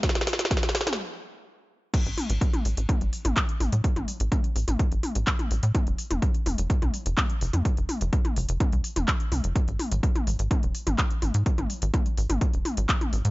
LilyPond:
<<
  \new Staff \with { instrumentName = "Analog synth bass" } { \clef bass \time 4/4 \key f \major \tempo 4 = 126 r1 | r16 a,,16 r16 a,,16 r8 a,,16 a,,16 r16 g,,16 r16 a,,16 r8 a,,16 a,16 | r16 a,,16 r16 a,,16 r8 a,,16 a,,16 r16 g,,16 r16 a,,16 r8 a,,16 a,16 | r16 f,,16 r16 f,,16 r8 f,,16 f,,16 r16 c,16 r16 f,,16 r8 f,,16 f,16 |
r16 f,,16 r16 f,,16 r8 f,,16 f,,16 r16 c,16 r16 f,,16 r8 c,16 f,,16 | r16 gis,,16 r16 gis,,16 r8 gis,,16 gis,,16 r16 dis,,16 r16 gis,,16 r8 gis,,16 gis,16 | r16 gis,,16 r16 gis,,16 r8 gis,,16 gis,,16 r16 dis,,16 r16 gis,,16 r8 gis,,16 gis,16 | }
  \new DrumStaff \with { instrumentName = "Drums" } \drummode { \time 4/4 <hh bd sn>32 sn32 <hh sn>32 sn32 <hho sn>32 sn32 <hh sn>32 sn32 <hh bd sn>32 sn32 <hh sn>32 sn32 <hho sn>32 sn32 <hh sn toml>32 sn32 r4 r4 | <cymc hh bd>16 hh16 <hho toml>16 hh16 <hh bd>16 <hh toml>16 hho16 hh16 <hh bd toml>16 hh16 hho16 <hh toml>16 <hc hh bd>16 hh16 <hho toml>16 hh16 | <hh bd>16 <hh toml>16 hho16 hh16 <hh bd toml>16 hh16 hho16 <hh toml>16 <hh bd>16 hh16 <hho toml>16 hh16 <hc hh bd>16 <hh toml>16 hho16 hh16 | <hh bd toml>16 hh16 hho16 <hh toml>16 <hh bd>16 hh16 <hho toml>16 hh16 <hh bd>16 <hh toml>16 hho16 hh16 <hc hh bd toml>16 hh16 hho16 <hh toml>16 |
<hh bd>16 hh16 <hho toml>16 hh16 <hh bd>16 <hh toml>16 hho16 hh16 <hh bd toml>16 hh16 hho16 <hh toml>16 <hc hh bd>16 hh16 <hho toml>16 hh16 | <hh bd>16 hh16 <hho toml>16 hh16 <hh bd>16 <hh toml>16 hho16 hh16 <hh bd toml>16 hh16 hho16 <hh toml>16 <hc hh bd>16 hh16 <hho toml>16 hh16 | <hh bd>16 <hh toml>16 hho16 hh16 <hh bd toml>16 hh16 hho16 <hh toml>16 <hh bd>16 hh16 <hho toml>16 hh16 <hc hh bd>16 <hh toml>16 hho16 hh16 | }
>>